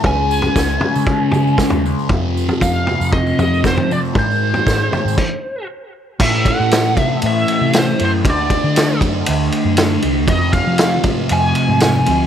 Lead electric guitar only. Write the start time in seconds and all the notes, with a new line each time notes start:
0.06 G#5
2.62 F5
3.12 D#5
3.40 D#5
3.67 C5
3.92 D5
4.19 C5
6.21 E5
6.48 F#5
7.00 E5
7.26 E5
7.79 C5
8.05 C5
8.30 D5
10.30 D#5
10.53 F5
11.32 G#5
11.83 G#5